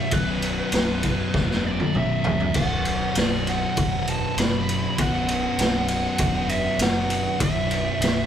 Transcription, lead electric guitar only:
0, 0, Header, 1, 2, 480
1, 0, Start_track
1, 0, Tempo, 607287
1, 92, Time_signature, 4, 2, 24, 8
1, 6531, End_track
2, 0, Start_track
2, 0, Title_t, "Lead electric guitar"
2, 0, Program_c, 0, 29
2, 0, Note_on_c, 0, 76, 94
2, 104, Note_on_c, 0, 71, 95
2, 110, Note_off_c, 0, 76, 0
2, 1270, Note_off_c, 0, 71, 0
2, 1315, Note_on_c, 0, 74, 89
2, 1552, Note_off_c, 0, 74, 0
2, 1553, Note_on_c, 0, 76, 90
2, 2017, Note_off_c, 0, 76, 0
2, 2020, Note_on_c, 0, 78, 99
2, 2510, Note_on_c, 0, 74, 89
2, 2513, Note_off_c, 0, 78, 0
2, 2750, Note_off_c, 0, 74, 0
2, 2751, Note_on_c, 0, 78, 83
2, 3237, Note_on_c, 0, 81, 93
2, 3238, Note_off_c, 0, 78, 0
2, 3467, Note_off_c, 0, 81, 0
2, 3470, Note_on_c, 0, 83, 93
2, 3957, Note_off_c, 0, 83, 0
2, 3959, Note_on_c, 0, 78, 98
2, 4634, Note_off_c, 0, 78, 0
2, 4657, Note_on_c, 0, 78, 91
2, 5134, Note_off_c, 0, 78, 0
2, 5137, Note_on_c, 0, 76, 85
2, 5382, Note_off_c, 0, 76, 0
2, 5390, Note_on_c, 0, 78, 90
2, 5828, Note_off_c, 0, 78, 0
2, 5871, Note_on_c, 0, 76, 87
2, 6531, Note_off_c, 0, 76, 0
2, 6531, End_track
0, 0, End_of_file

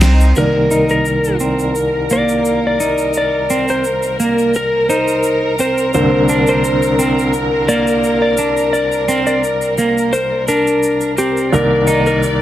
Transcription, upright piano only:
0, 0, Header, 1, 2, 480
1, 0, Start_track
1, 0, Key_signature, -3, "minor"
1, 0, Tempo, 697674
1, 250, Time_signature, 4, 2, 24, 8
1, 8544, End_track
2, 0, Start_track
2, 0, Title_t, "Upright piano"
2, 0, Program_c, 0, 0
2, 252, Note_on_c, 0, 36, 68
2, 256, Note_on_c, 0, 51, 61
2, 262, Note_on_c, 0, 58, 60
2, 265, Note_on_c, 0, 74, 74
2, 4064, Note_off_c, 0, 36, 0
2, 4066, Note_off_c, 0, 51, 0
2, 4069, Note_off_c, 0, 58, 0
2, 4070, Note_off_c, 0, 74, 0
2, 4089, Note_on_c, 0, 36, 67
2, 4091, Note_on_c, 0, 50, 65
2, 4097, Note_on_c, 0, 58, 63
2, 4099, Note_on_c, 0, 60, 73
2, 7902, Note_off_c, 0, 36, 0
2, 7903, Note_off_c, 0, 50, 0
2, 7906, Note_off_c, 0, 58, 0
2, 7907, Note_off_c, 0, 60, 0
2, 7929, Note_on_c, 0, 36, 68
2, 7935, Note_on_c, 0, 51, 62
2, 7942, Note_on_c, 0, 58, 64
2, 7943, Note_on_c, 0, 74, 78
2, 8544, Note_off_c, 0, 36, 0
2, 8544, Note_off_c, 0, 51, 0
2, 8544, Note_off_c, 0, 58, 0
2, 8544, Note_off_c, 0, 74, 0
2, 8544, End_track
0, 0, End_of_file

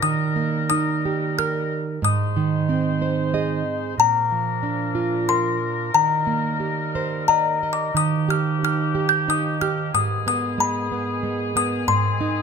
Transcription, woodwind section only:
0, 0, Header, 1, 2, 480
1, 0, Start_track
1, 0, Key_signature, -3, "major"
1, 0, Tempo, 663717
1, 26, Time_signature, 3, 2, 24, 8
1, 1466, Tempo, 651466
1, 4346, Tempo, 668151
1, 7226, Tempo, 648649
1, 9059, End_track
2, 0, Start_track
2, 0, Title_t, "Woodwind section"
2, 0, Program_c, 0, 71
2, 0, Note_on_c, 0, 70, 73
2, 26, Note_on_c, 0, 63, 56
2, 28, Note_on_c, 0, 55, 66
2, 1345, Note_off_c, 0, 55, 0
2, 1345, Note_off_c, 0, 63, 0
2, 1345, Note_off_c, 0, 70, 0
2, 1468, Note_on_c, 0, 56, 67
2, 1476, Note_on_c, 0, 63, 57
2, 1476, Note_on_c, 0, 72, 68
2, 2891, Note_off_c, 0, 56, 0
2, 2895, Note_off_c, 0, 63, 0
2, 2895, Note_off_c, 0, 72, 0
2, 2904, Note_on_c, 0, 53, 74
2, 2904, Note_on_c, 0, 62, 64
2, 2906, Note_on_c, 0, 70, 71
2, 4333, Note_off_c, 0, 53, 0
2, 4333, Note_off_c, 0, 62, 0
2, 4339, Note_on_c, 0, 63, 55
2, 4346, Note_on_c, 0, 55, 58
2, 5766, Note_off_c, 0, 70, 0
2, 5776, Note_off_c, 0, 63, 0
2, 5779, Note_off_c, 0, 55, 0
2, 5788, Note_on_c, 0, 63, 59
2, 5788, Note_on_c, 0, 67, 70
2, 5793, Note_on_c, 0, 53, 66
2, 7209, Note_off_c, 0, 63, 0
2, 7209, Note_off_c, 0, 67, 0
2, 7211, Note_off_c, 0, 53, 0
2, 7215, Note_on_c, 0, 51, 66
2, 7215, Note_on_c, 0, 59, 66
2, 7216, Note_on_c, 0, 68, 79
2, 8547, Note_off_c, 0, 59, 0
2, 8673, Note_on_c, 0, 60, 65
2, 9059, Note_off_c, 0, 51, 0
2, 9059, Note_off_c, 0, 60, 0
2, 9059, Note_off_c, 0, 68, 0
2, 9059, End_track
0, 0, End_of_file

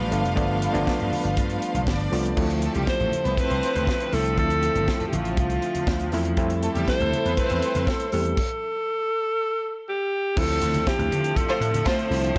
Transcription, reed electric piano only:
0, 0, Header, 1, 2, 480
1, 0, Start_track
1, 0, Tempo, 499584
1, 355, Time_signature, 4, 2, 24, 8
1, 11898, End_track
2, 0, Start_track
2, 0, Title_t, "Reed electric piano"
2, 0, Program_c, 0, 4
2, 0, Control_c, 0, 64, 127
2, 0, Note_on_c, 0, 53, 83
2, 0, Note_on_c, 0, 57, 76
2, 0, Note_on_c, 0, 59, 78
2, 0, Note_on_c, 0, 62, 89
2, 107, Note_off_c, 0, 53, 0
2, 107, Note_on_c, 0, 53, 76
2, 109, Note_off_c, 0, 57, 0
2, 109, Note_on_c, 0, 57, 78
2, 116, Note_off_c, 0, 59, 0
2, 116, Note_on_c, 0, 59, 80
2, 123, Note_off_c, 0, 62, 0
2, 123, Note_on_c, 0, 62, 92
2, 268, Note_off_c, 0, 53, 0
2, 269, Note_off_c, 0, 57, 0
2, 273, Note_off_c, 0, 59, 0
2, 276, Note_off_c, 0, 62, 0
2, 341, Note_on_c, 0, 53, 80
2, 345, Note_on_c, 0, 57, 76
2, 350, Note_on_c, 0, 59, 79
2, 355, Note_on_c, 0, 62, 90
2, 585, Note_off_c, 0, 53, 0
2, 587, Note_off_c, 0, 57, 0
2, 589, Note_off_c, 0, 59, 0
2, 592, Note_off_c, 0, 62, 0
2, 704, Note_on_c, 0, 53, 79
2, 704, Note_on_c, 0, 57, 78
2, 710, Note_on_c, 0, 59, 77
2, 712, Note_on_c, 0, 62, 95
2, 1342, Note_off_c, 0, 53, 0
2, 1342, Note_off_c, 0, 57, 0
2, 1345, Note_off_c, 0, 59, 0
2, 1346, Note_off_c, 0, 62, 0
2, 2034, Note_on_c, 0, 53, 83
2, 2037, Note_on_c, 0, 57, 78
2, 2043, Note_on_c, 0, 59, 81
2, 2046, Note_on_c, 0, 65, 86
2, 2195, Note_off_c, 0, 53, 0
2, 2196, Note_off_c, 0, 57, 0
2, 2199, Note_off_c, 0, 59, 0
2, 2201, Note_off_c, 0, 65, 0
2, 2273, Note_on_c, 0, 53, 81
2, 2277, Note_on_c, 0, 57, 75
2, 2282, Note_on_c, 0, 60, 73
2, 2286, Note_on_c, 0, 64, 92
2, 2294, Control_c, 0, 64, 0
2, 2454, Control_c, 0, 64, 127
2, 2908, Note_off_c, 0, 53, 0
2, 2910, Note_off_c, 0, 57, 0
2, 2913, Note_off_c, 0, 60, 0
2, 2915, Note_off_c, 0, 64, 0
2, 3955, Note_on_c, 0, 53, 64
2, 3959, Note_on_c, 0, 57, 69
2, 3965, Note_on_c, 0, 60, 59
2, 3971, Note_on_c, 0, 64, 74
2, 4117, Note_off_c, 0, 53, 0
2, 4119, Note_off_c, 0, 57, 0
2, 4122, Note_off_c, 0, 60, 0
2, 4125, Note_off_c, 0, 64, 0
2, 4201, Note_on_c, 0, 53, 78
2, 4205, Note_on_c, 0, 57, 63
2, 4211, Note_on_c, 0, 60, 63
2, 4214, Note_on_c, 0, 64, 74
2, 4834, Note_off_c, 0, 53, 0
2, 4836, Note_off_c, 0, 57, 0
2, 4838, Note_off_c, 0, 60, 0
2, 4840, Note_off_c, 0, 64, 0
2, 5884, Note_on_c, 0, 53, 84
2, 5888, Note_on_c, 0, 57, 73
2, 5893, Note_on_c, 0, 60, 81
2, 5897, Note_on_c, 0, 64, 95
2, 6043, Note_off_c, 0, 53, 0
2, 6044, Note_off_c, 0, 57, 0
2, 6047, Note_off_c, 0, 60, 0
2, 6049, Note_off_c, 0, 64, 0
2, 6123, Note_on_c, 0, 55, 85
2, 6126, Note_on_c, 0, 57, 76
2, 6130, Note_on_c, 0, 60, 85
2, 6137, Note_on_c, 0, 64, 95
2, 6139, Control_c, 0, 64, 0
2, 6304, Control_c, 0, 64, 127
2, 6754, Note_off_c, 0, 55, 0
2, 6756, Note_off_c, 0, 57, 0
2, 6758, Note_off_c, 0, 60, 0
2, 6761, Note_off_c, 0, 64, 0
2, 7807, Note_on_c, 0, 55, 78
2, 7812, Note_on_c, 0, 57, 57
2, 7815, Note_on_c, 0, 60, 58
2, 7817, Note_on_c, 0, 67, 77
2, 7964, Note_off_c, 0, 55, 0
2, 7966, Note_off_c, 0, 57, 0
2, 7967, Note_off_c, 0, 60, 0
2, 7968, Note_off_c, 0, 67, 0
2, 8059, Control_c, 0, 64, 0
2, 9958, Note_on_c, 0, 53, 73
2, 9959, Note_on_c, 0, 57, 63
2, 9964, Note_on_c, 0, 60, 71
2, 9972, Note_on_c, 0, 64, 84
2, 10116, Control_c, 0, 64, 127
2, 10587, Note_off_c, 0, 53, 0
2, 10587, Note_off_c, 0, 57, 0
2, 10590, Note_off_c, 0, 60, 0
2, 10594, Note_off_c, 0, 64, 0
2, 11627, Note_on_c, 0, 53, 73
2, 11630, Note_on_c, 0, 57, 64
2, 11635, Note_on_c, 0, 60, 61
2, 11642, Note_on_c, 0, 64, 89
2, 11787, Note_off_c, 0, 53, 0
2, 11788, Note_off_c, 0, 57, 0
2, 11791, Note_off_c, 0, 60, 0
2, 11794, Note_off_c, 0, 64, 0
2, 11898, End_track
0, 0, End_of_file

